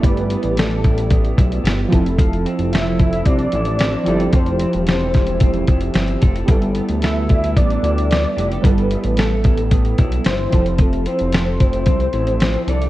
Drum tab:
HH |xxxxx-xxxxxxx-xx|xxxxx-xxxxxxx-xx|xxxxx-xxxxxxxxxx|xxxxx-xxxxxxx-xx|
SD |----o-------o---|----o-------o---|----o-o-----o---|----o-------o---|
BD |o-----o-o-o---o-|o-----o-o-------|o-----o-o-o---o-|o-----o-o-------|

HH |xxxxx-xxxxxxx-xx|xxxxx-xxxxxxx-xx|
SD |----o-------o---|----o-------o---|
BD |o-----o-o-o---o-|o-----o-o-------|